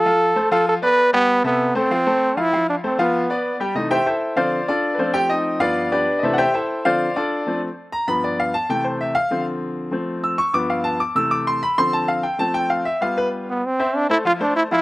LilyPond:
<<
  \new Staff \with { instrumentName = "Grand piano" } { \time 4/4 \key c \major \tempo 4 = 194 <f f' f''>4 <a a' c''>8 <f f' f''>4 <b b' d''>4 <g g' g''>8~ | <g g' g''>8 <c a' e''>4 <a a' c''>8 <f f' f''>8 <a a' c''>4 <f f' f''>8 | <f f' f''>4 <a a' c''>8 <f f' f''>4 <b b' d''>4 <g g' g''>8 | <ees' ees''>8 <g' c'' e'' g''>8 <e' a' c'' e''>4 <f' c'' d'' f''>4 <d' f' a' d''>4 |
<c' f' a' b' c''>8 <g' g''>8 <ees' ees''>4 <f' b' d'' f''>4 <d' g' b' d''>4 | <e' a' c'' ees'' e''>8 <g' c'' e'' fis'' g''>8 <e' a' c'' e''>4 <f' c'' d'' f''>4 <d' f' a' d''>4~ | <d' f' a' d''>8 r4 bes''8 b''8 d''8 f''8 a''8 | g''8 c''8 e''8 f''4 r4. |
r4 e'''8 des'''8 d'''8 f''8 a''8 d'''8 | e'''8 d'''8 c'''8 b''8 c'''8 a''8 f''8 g''8 | a''8 g''8 f''8 e''8 f''8 b'8 r4 | r8 <c' c'' e''>4 <a a' c''>8 <f f' f''>8 <a a' c''>4 <f f' f''>8 | }
  \new Staff \with { instrumentName = "Grand piano" } { \clef bass \time 4/4 \key c \major r1 | r1 | r1 | <c e a>8 r4. <d f c'>8 r4. |
<f a>2 <g, f b>4. r8 | <c e a>8 r4. <d f c'>8 r4. | <f a c'>8 r4. <g, f b>4. r8 | <c e a>4. r8 <d f c'>2 |
<f a c'>4. r8 <g, f b>4. r8 | <c e a>4. r8 <d f c'>4. r8 | <f a c'>4. r8 <g b f'>2 | r1 | }
  \new Staff \with { instrumentName = "Trombone" } { \time 4/4 \key c \major a'4. a'8 a'8 b'4 b8~ | b8 b4 c'2 e'8~ | e'8 d'8 c'8 b2 r8 | r1 |
r1 | r1 | r1 | r1 |
r1 | r1 | r2. r8 b8 | c'4 d'8 e'8 f'8 d'8 e'8 e'8 | }
>>